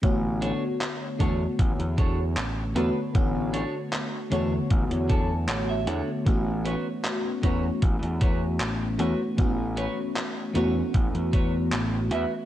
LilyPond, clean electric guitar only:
\new Staff \with { instrumentName = "Clean electric guitar" } { \time 4/4 \key b \dorian \tempo 4 = 77 << { r1 | r2 r8 a''8 fis''16 e''8. | r1 | r1 | } \\ { r8 <d' a' cis''>16 r8. <d' a' cis''>16 r8. <d' a' cis''>16 r8. <d' a' b'>16 r16 | r8 <d' a' cis''>16 r8. <d' a' cis''>16 r8. <d' a' cis''>16 r8. <d' a' cis''>16 r16 | r8 <fis' b' cis''>16 r8. <fis' b' cis''>16 r8. <fis' b' cis''>16 r8. <fis' b' cis''>16 r16 | r8 <fis' b' cis''>16 r8. <fis' b' cis''>16 r8. <fis' b' cis''>16 r8. <fis' b' e''>16 r16 | } >> }